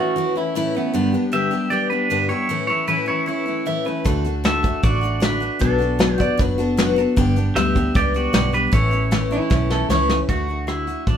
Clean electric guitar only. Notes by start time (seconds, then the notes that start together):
0.00 F#4
0.37 E4
0.56 E4
0.76 B3
0.95 B3
3.67 E5
3.86 B4
4.06 A4
6.20 D5
6.40 B4
6.60 A4
6.80 F#4
6.98 A4
7.17 G4
9.32 E4
9.71 A4
9.90 C#5